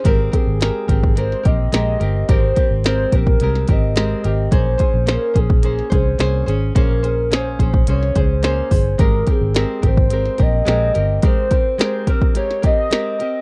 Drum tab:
HH |x-x-x-x-x-x-x-x-|x-x-x-x-x-x-x-x-|x-x-x-x-x-x-x-x-|x-x-x-x-x-x-x-o-|
SD |----o----o--o---|----o----o--o---|----o----o--o---|----o----o--o---|
BD |o-o---oo--o-----|o-o---oo--o-----|o-o---oo--o-----|o-----oo--o---o-|

HH |x-x-x-x-x-x-x-x-|x-x-x-x-x-x-x-x-|
SD |----o----o--o---|----o----o--o---|
BD |o-o---oo--o-----|o-o---oo--o-----|